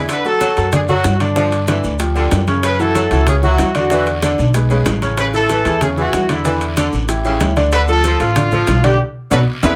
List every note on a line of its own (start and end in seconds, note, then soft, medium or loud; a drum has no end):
0.09 0.26 D3 medium
0.09 0.25 B4 loud
0.09 high bongo medium
0.09 high conga soft
0.09 high timbale medium
0.09 long guiro medium
0.09 maracas medium
0.25 0.51 F#3 medium
0.25 0.51 F#4 medium
0.25 0.52 A4 medium
0.25 0.70 A4 loud
0.25 high bongo soft
0.25 high conga soft
0.25 maracas soft
0.41 0.66 F#3 medium
0.41 high bongo medium
0.41 high conga medium
0.41 high timbale medium
0.41 low timbale soft
0.41 short guiro medium
0.41 maracas medium
0.57 1.01 F#2 medium
0.57 0.70 F#3 medium
0.57 0.70 F#4 medium
0.57 0.71 A4 medium
0.57 high bongo soft
0.57 high conga soft
0.57 high timbale medium
0.57 short guiro medium
0.57 maracas soft
0.72 0.86 D3 medium
0.72 0.86 D4 medium
0.72 0.81 G#4 medium
0.72 0.86 D5 medium
0.72 high bongo medium
0.72 high conga soft
0.72 low conga medium
0.72 high timbale medium
0.72 long guiro medium
0.72 maracas medium
0.88 1.15 F#3 medium
0.88 1.14 F#3 medium
0.88 1.15 F#4 medium
0.88 1.18 F#4 medium
0.88 1.15 A4 medium
0.88 high bongo soft
0.88 high conga soft
0.88 low conga medium
0.88 maracas soft
1.04 1.79 G2 medium
1.04 high bongo medium
1.04 low bongo medium
1.04 high conga medium
1.04 high timbale medium
1.04 low timbale medium
1.04 short guiro medium
1.04 maracas medium
1.20 1.34 D3 medium
1.20 1.34 D4 medium
1.20 1.65 D4 medium
1.20 1.34 D5 medium
1.20 high timbale medium
1.20 short guiro medium
1.20 maracas soft
1.36 1.62 D3 medium
1.36 1.53 F3 medium
1.36 1.63 D4 medium
1.36 1.63 D5 medium
1.36 high bongo medium
1.36 high conga soft
1.36 long guiro medium
1.36 maracas medium
1.52 high bongo soft
1.52 high conga soft
1.52 high timbale medium
1.52 maracas soft
1.68 1.94 D3 medium
1.68 1.93 E3 medium
1.68 1.94 D4 medium
1.68 1.94 D5 medium
1.68 high bongo medium
1.68 high conga loud
1.68 high timbale medium
1.68 low timbale medium
1.68 short guiro medium
1.68 maracas medium
1.84 2.29 D2 loud
1.84 high bongo soft
1.84 high conga soft
1.84 short guiro medium
1.84 maracas soft
1.99 2.13 F3 medium
1.99 2.13 F4 medium
1.99 2.13 G4 medium
1.99 high bongo medium
1.99 high conga soft
1.99 high timbale medium
1.99 long guiro medium
1.99 maracas medium
2.15 2.41 D3 medium
2.15 2.42 F3 medium
2.15 2.42 F4 medium
2.15 2.42 G4 medium
2.15 high bongo soft
2.15 high conga soft
2.15 maracas soft
2.31 3.06 F#2 medium
2.31 high bongo medium
2.31 low bongo medium
2.31 high conga medium
2.31 high timbale medium
2.31 low timbale medium
2.31 short guiro medium
2.31 maracas medium
2.47 2.74 C#3 medium
2.47 2.74 C#4 medium
2.47 2.74 C#5 medium
2.47 high conga medium
2.47 high timbale medium
2.47 short guiro medium
2.47 maracas soft
2.63 2.80 C#3 medium
2.63 2.79 B4 loud
2.63 high bongo medium
2.63 high conga soft
2.63 high timbale medium
2.63 long guiro medium
2.63 maracas medium
2.79 3.06 E3 medium
2.79 3.06 E4 medium
2.79 3.06 F#4 medium
2.79 3.28 A4 loud
2.79 high bongo soft
2.79 high conga soft
2.79 maracas soft
2.95 3.20 F#3 medium
2.95 high bongo medium
2.95 high conga medium
2.95 high timbale medium
2.95 low timbale medium
2.95 short guiro medium
2.95 maracas medium
3.11 3.55 C#2 loud
3.11 3.24 E3 medium
3.11 3.25 E4 medium
3.11 3.25 F#4 medium
3.11 high bongo soft
3.11 high conga soft
3.11 high timbale medium
3.11 short guiro medium
3.11 maracas soft
3.27 3.41 C#3 medium
3.27 3.41 C#4 medium
3.27 3.35 G#4 medium
3.27 3.41 C#5 medium
3.27 high bongo medium
3.27 high conga soft
3.27 low conga medium
3.27 high timbale medium
3.27 maracas medium
3.43 3.69 E3 medium
3.43 3.68 F#3 medium
3.43 3.69 E4 medium
3.43 3.70 F#4 medium
3.43 3.73 F#4 medium
3.43 high bongo soft
3.43 high conga soft
3.43 low conga medium
3.43 maracas soft
3.58 4.33 E2 medium
3.58 high bongo medium
3.58 low bongo medium
3.58 high conga medium
3.58 high timbale medium
3.58 low timbale medium
3.58 short guiro medium
3.58 maracas medium
3.75 3.88 D3 medium
3.75 3.88 D4 medium
3.75 4.20 F#4 medium
3.75 3.88 D5 medium
3.75 high conga soft
3.75 high timbale medium
3.75 short guiro medium
3.75 maracas soft
3.90 4.17 D3 medium
3.90 4.08 E3 medium
3.90 4.17 D4 medium
3.90 4.17 D5 medium
3.90 high bongo medium
3.90 high conga soft
3.90 long guiro medium
3.90 maracas medium
4.06 high bongo soft
4.06 high conga soft
4.06 high timbale medium
4.06 maracas soft
4.22 4.49 D3 medium
4.22 4.48 D3 medium
4.22 4.49 D4 medium
4.22 4.49 D5 medium
4.22 high bongo medium
4.22 high conga medium
4.22 high timbale medium
4.22 low timbale medium
4.22 short guiro medium
4.22 maracas medium
4.38 4.83 B1 loud
4.38 high bongo soft
4.38 high conga soft
4.38 short guiro medium
4.38 maracas soft
4.54 4.68 G#3 medium
4.54 4.68 G#4 medium
4.54 4.68 B4 medium
4.54 high bongo medium
4.54 high conga soft
4.54 high timbale medium
4.54 long guiro medium
4.54 maracas medium
4.70 4.96 C#3 medium
4.70 4.96 G#3 medium
4.70 4.97 G#4 medium
4.70 4.97 B4 medium
4.70 high bongo soft
4.70 high conga soft
4.70 maracas soft
4.86 5.60 A1 medium
4.86 high bongo medium
4.86 low bongo medium
4.86 high conga medium
4.86 high timbale medium
4.86 low timbale medium
4.86 short guiro medium
4.86 maracas medium
5.02 5.28 C#3 medium
5.02 5.28 C#4 medium
5.02 5.29 C#5 medium
5.02 high conga medium
5.02 high timbale medium
5.02 short guiro medium
5.02 maracas soft
5.17 5.35 C#3 medium
5.17 5.26 B4 loud
5.17 high bongo medium
5.17 high conga soft
5.17 high timbale loud
5.17 long guiro medium
5.17 maracas medium
5.33 5.60 E3 medium
5.33 5.60 E4 medium
5.33 5.60 A4 medium
5.33 5.79 A4 loud
5.33 high bongo soft
5.33 high conga soft
5.33 maracas soft
5.49 5.75 E3 medium
5.49 high bongo medium
5.49 high conga medium
5.49 high timbale medium
5.49 low timbale medium
5.49 short guiro medium
5.49 maracas medium
5.65 6.10 E2 loud
5.65 5.79 E3 medium
5.65 5.79 E4 medium
5.65 5.79 G#4 medium
5.65 high bongo soft
5.65 high conga soft
5.65 high timbale medium
5.65 short guiro medium
5.65 maracas soft
5.81 5.95 C#3 medium
5.81 5.95 C#4 medium
5.81 5.89 G#4 medium
5.81 5.95 C#5 medium
5.81 high bongo medium
5.81 high conga soft
5.81 low conga medium
5.81 high timbale loud
5.81 long guiro medium
5.81 maracas medium
5.97 6.23 E3 medium
5.97 6.24 E3 medium
5.97 6.24 E4 medium
5.97 6.28 F#4 medium
5.97 6.24 G#4 medium
5.97 high bongo soft
5.97 high conga soft
5.97 maracas soft
6.13 6.87 E2 medium
6.13 high bongo medium
6.13 low bongo medium
6.13 high conga medium
6.13 high timbale medium
6.13 low timbale medium
6.13 short guiro medium
6.13 maracas medium
6.29 6.42 D3 medium
6.29 6.42 D4 medium
6.29 6.75 E4 medium
6.29 6.42 D5 medium
6.29 high timbale loud
6.29 short guiro medium
6.29 maracas soft
6.45 6.71 D3 medium
6.45 6.62 E3 medium
6.45 6.71 D4 medium
6.45 6.72 D5 medium
6.45 high bongo medium
6.45 long guiro medium
6.45 maracas medium
6.61 high bongo soft
6.61 high conga soft
6.61 high timbale medium
6.61 maracas soft
6.77 7.03 D3 medium
6.77 6.94 D3 medium
6.77 7.03 D4 medium
6.77 7.03 D5 medium
6.77 high bongo medium
6.77 high conga loud
6.77 high timbale medium
6.77 low timbale medium
6.77 short guiro medium
6.77 maracas medium
6.92 7.37 A1 loud
6.92 high bongo soft
6.92 high conga soft
6.92 short guiro medium
6.92 maracas soft
7.09 7.22 E3 medium
7.09 7.22 E4 medium
7.09 7.22 G4 medium
7.09 high bongo medium
7.09 high conga soft
7.09 high timbale medium
7.09 long guiro medium
7.09 maracas medium
7.25 7.50 C#3 medium
7.25 7.51 E3 medium
7.25 7.51 E4 medium
7.25 7.51 G4 medium
7.25 high bongo soft
7.25 high conga soft
7.25 maracas soft
7.40 8.14 D2 medium
7.40 high bongo medium
7.40 low bongo medium
7.40 high conga medium
7.40 high timbale medium
7.40 low timbale medium
7.40 short guiro medium
7.40 maracas medium
7.56 7.82 D3 medium
7.56 7.83 D4 medium
7.56 7.83 D5 medium
7.56 high conga medium
7.56 high timbale medium
7.56 short guiro medium
7.56 maracas soft
7.72 7.89 D3 medium
7.72 7.80 B4 loud
7.72 high bongo medium
7.72 high conga soft
7.72 high timbale medium
7.72 maracas medium
7.88 8.14 F3 medium
7.88 8.14 F4 medium
7.88 8.15 A4 medium
7.88 8.18 A4 loud
7.88 high bongo soft
7.88 high conga soft
7.88 maracas soft
8.04 8.30 F3 medium
8.04 high bongo medium
8.04 high conga medium
8.04 high timbale medium
8.04 low timbale medium
8.04 short guiro medium
8.04 maracas medium
8.20 8.64 A1 loud
8.20 8.33 F3 medium
8.20 8.80 F4 medium
8.20 8.33 F4 medium
8.20 8.33 A4 medium
8.20 high bongo soft
8.20 high conga soft
8.20 high timbale medium
8.20 short guiro medium
8.20 maracas soft
8.36 8.49 D3 medium
8.36 8.49 D4 medium
8.36 8.49 D5 medium
8.36 high bongo medium
8.36 high conga soft
8.36 low conga medium
8.36 high timbale loud
8.36 long guiro medium
8.36 maracas medium
8.52 8.78 F3 medium
8.52 8.77 F3 medium
8.52 8.78 F4 medium
8.52 8.78 A4 medium
8.52 high bongo soft
8.52 high conga soft
8.52 low conga medium
8.52 maracas soft
8.67 8.97 B1 medium
8.67 high bongo medium
8.67 low bongo medium
8.67 high conga medium
8.67 high timbale medium
8.67 low timbale medium
8.67 short guiro medium
8.67 maracas medium
8.83 8.97 D3 medium
8.83 8.97 D4 medium
8.83 8.99 G4 loud
8.83 8.97 D5 medium
8.83 high timbale medium
8.83 short guiro medium
8.83 maracas soft
9.31 9.43 B1 loud
9.31 9.39 B2 medium
9.31 9.39 D3 medium
9.31 9.39 F#3 medium
9.31 9.42 B3 medium
9.31 9.42 D4 medium
9.31 9.39 F#4 medium
9.31 9.42 F#4 medium
9.31 9.39 A4 loud
9.31 9.39 B4 medium
9.31 low bongo medium
9.31 high conga loud
9.31 high timbale medium
9.31 long guiro medium
9.31 maracas medium
9.63 9.75 E2 loud
9.63 9.71 D3 loud
9.63 9.71 E3 loud
9.63 9.71 G#3 loud
9.63 9.73 B3 medium
9.63 9.73 D4 medium
9.63 9.73 E4 loud
9.63 9.71 E4 medium
9.63 9.71 G#4 medium
9.63 9.71 B4 medium
9.63 low bongo loud
9.63 high conga loud
9.63 high timbale loud
9.63 long guiro medium
9.63 maracas medium